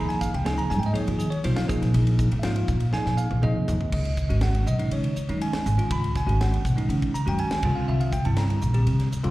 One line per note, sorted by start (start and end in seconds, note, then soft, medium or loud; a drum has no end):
0.00 0.18 D#2 medium
0.00 0.29 F3 medium
0.00 0.29 A#3 medium
0.00 0.29 D#4 medium
0.00 0.29 G#4 medium
0.09 0.21 G#5 medium
0.09 snare soft
0.09 ride medium
0.21 0.34 F5 medium
0.21 kick medium
0.21 snare soft
0.21 hi-hat pedal medium
0.34 0.55 C#2 medium
0.34 0.46 G5 medium
0.34 ride medium
0.45 0.79 F3 medium
0.45 0.79 A#3 medium
0.45 0.79 D#4 medium
0.45 0.79 G#4 medium
0.45 0.58 G#5 medium
0.45 snare loud
0.45 ride medium
0.58 0.70 A#5 loud
0.58 muted upright bass stroke soft
0.58 ride medium
0.70 0.92 G#2 medium
0.70 0.79 G#5 medium
0.70 snare soft
0.70 hi-hat pedal medium
0.79 0.87 G5 medium
0.79 ride medium
0.86 0.95 D#5 medium
0.93 1.28 F3 medium
0.93 1.28 A#3 medium
0.93 1.28 D#4 medium
0.93 1.17 G#4 medium
0.93 1.08 C#5 medium
0.93 ride medium
1.08 1.29 D#3 medium
1.08 1.20 F4 medium
1.08 ride medium
1.19 1.32 G#4 medium
1.19 hi-hat pedal medium
1.30 1.43 C#5 medium
1.30 ride medium
1.44 1.66 B1 medium
1.44 1.66 F3 medium
1.44 1.67 A#3 medium
1.44 1.67 D#4 medium
1.44 1.70 F4 medium
1.44 1.57 C5 medium
1.44 ride medium
1.56 1.64 F5 medium
1.56 snare loud
1.56 ride medium
1.67 2.28 F3 medium
1.67 2.29 A#3 medium
1.67 2.29 D#4 medium
1.67 2.29 G#4 medium
1.67 muted upright bass stroke soft
1.67 kick loud
1.67 hi-hat pedal medium
1.82 1.92 A#2 medium
1.82 snare soft
1.82 ride medium
1.94 2.26 A#1 medium
1.94 ride medium
2.07 ride medium
2.19 kick medium
2.19 hi-hat pedal medium
2.32 2.64 G#2 medium
2.32 ride medium
2.39 2.77 F3 medium
2.39 2.77 A#3 medium
2.39 2.77 D#4 medium
2.39 2.43 E5 medium
2.39 snare loud
2.39 ride medium
2.44 2.77 F4 medium
2.44 2.90 F5 medium
2.56 ride medium
2.68 2.90 A#2 medium
2.68 kick medium
2.68 hi-hat pedal medium
2.80 ride medium
2.92 3.26 F3 medium
2.92 3.26 A#3 medium
2.92 3.26 D#4 medium
2.92 3.27 G#4 medium
2.92 3.18 G#5 loud
2.92 snare medium
3.06 3.17 A#2 medium
3.06 snare medium
3.17 3.42 F5 medium
3.17 hi-hat pedal medium
3.31 3.42 A#1 medium
3.31 high tom medium
3.42 3.66 F2 medium
3.42 3.76 F3 medium
3.42 3.76 A#3 medium
3.42 3.76 D#4 medium
3.42 3.76 G#4 medium
3.42 3.89 D#5 medium
3.42 mid tom medium
3.68 3.91 D#2 medium
3.68 floor tom loud
3.68 hi-hat pedal medium
3.81 floor tom medium
3.92 4.14 C#2 medium
3.92 4.39 D#5 medium
3.92 kick loud
3.92 crash loud
4.05 ride medium
4.17 kick medium
4.17 hi-hat pedal medium
4.29 4.61 G#1 medium
4.29 4.62 D#3 medium
4.29 4.63 G#3 medium
4.29 4.63 C#4 medium
4.29 4.63 F#4 medium
4.29 ride medium
4.41 4.66 F#5 medium
4.41 snare loud
4.41 ride medium
4.55 ride medium
4.66 4.88 B1 medium
4.66 4.91 D#5 medium
4.66 hi-hat pedal medium
4.79 5.12 D#3 medium
4.79 5.12 G#3 medium
4.79 5.12 C#4 medium
4.79 5.12 D#4 medium
4.79 ride medium
4.91 5.12 C#3 medium
4.91 5.38 C#5 medium
4.91 ride medium
5.04 ride medium
5.16 muted upright bass stroke soft
5.16 hi-hat pedal medium
5.28 5.40 F#2 medium
5.28 5.62 D#3 medium
5.28 5.62 G#3 medium
5.28 5.62 C#4 medium
5.28 5.62 D#4 medium
5.28 ride medium
5.41 5.87 G#5 medium
5.41 ride medium
5.53 muted upright bass stroke soft
5.53 snare loud
5.53 ride medium
5.66 5.77 G#1 loud
5.66 hi-hat pedal medium
5.77 6.11 D#3 medium
5.77 6.11 G#3 medium
5.77 6.11 C#4 medium
5.77 6.11 F4 medium
5.77 muted upright bass stroke soft
5.77 ride medium
5.91 6.12 C#2 medium
5.91 6.15 B5 loud
5.91 kick loud
5.91 ride medium
6.04 ride medium
6.16 6.40 G#5 medium
6.16 kick medium
6.16 snare soft
6.16 hi-hat pedal medium
6.26 6.59 G#1 medium
6.26 6.60 D#3 medium
6.26 6.60 G#3 medium
6.26 6.60 C#4 medium
6.26 6.60 F#4 medium
6.26 ride medium
6.41 6.86 F#5 medium
6.41 snare loud
6.41 ride medium
6.54 ride medium
6.65 6.86 B1 medium
6.65 kick medium
6.65 hi-hat pedal medium
6.76 7.10 D#3 medium
6.76 7.10 G#3 medium
6.76 7.10 C#4 medium
6.76 7.10 D#4 medium
6.76 ride medium
6.89 7.10 C#3 medium
6.89 ride medium
7.02 kick medium
7.02 ride medium
7.14 7.27 A#5 medium
7.14 muted upright bass stroke soft
7.14 hi-hat pedal medium
7.26 7.37 F#2 medium
7.26 7.59 D#3 medium
7.26 7.59 G#3 medium
7.26 7.59 C#4 medium
7.26 7.60 F#4 medium
7.26 7.39 G5 medium
7.26 ride medium
7.39 7.74 G#5 loud
7.39 ride medium
7.51 muted upright bass stroke soft
7.51 snare loud
7.51 ride medium
7.62 7.74 C2 loud
7.62 8.13 D3 medium
7.62 8.13 G3 medium
7.62 8.14 C4 medium
7.62 8.13 F4 medium
7.62 kick loud
7.62 crash medium
7.75 7.87 F5 medium
7.75 muted upright bass stroke soft
7.88 8.10 C2 medium
7.88 8.01 E5 medium
8.00 8.12 F5 medium
8.00 ride medium
8.12 8.25 G5 medium
8.12 kick medium
8.12 hi-hat pedal medium
8.25 8.57 G2 medium
8.25 8.58 D3 medium
8.25 8.58 G3 medium
8.25 8.58 C4 medium
8.25 8.59 E4 medium
8.25 8.37 A5 medium
8.25 ride medium
8.37 9.08 A#5 medium
8.37 snare loud
8.37 ride medium
8.50 ride medium
8.62 8.83 A#1 medium
8.62 hi-hat pedal medium
8.73 9.07 D3 medium
8.73 9.07 G3 medium
8.73 9.07 C4 medium
8.73 9.07 G4 medium
8.73 ride medium
8.87 9.08 C3 medium
8.87 ride medium
9.00 snare soft
9.00 ride medium
9.12 muted upright bass stroke soft
9.12 hi-hat pedal medium
9.24 9.31 F2 medium
9.24 9.31 D3 loud
9.24 9.31 G3 medium
9.24 9.31 C4 medium
9.24 9.31 F4 loud
9.24 ride medium